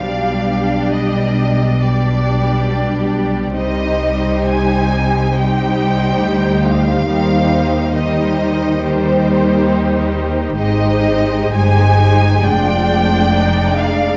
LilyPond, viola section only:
\new Staff \with { instrumentName = "Viola section" } { \time 4/4 \key c \minor \tempo 4 = 68 <g d'>2 <g d'>2 | <g ees'>2 <g ees'>2 | <g ees'>4 <g ees'>4 <g ees'>2 | <aes ees'>4 <aes ees'>4 <aes d'>2 | }